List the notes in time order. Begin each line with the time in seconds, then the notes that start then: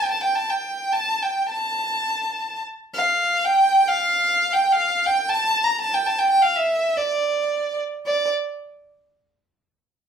0.00 G5
0.11 A5
0.23 G5
0.35 A5
0.50 G5
0.93 A5
1.22 G5
1.50 A5
2.94 F5
3.45 G5
3.88 F5
4.53 G5
4.72 F5
5.06 G5
5.29 A5
5.64 A#5
5.81 A5
5.94 G5
6.07 A5
6.19 G5
6.30 G5
6.42 F5
6.56 E5
6.97 D5
8.06 D5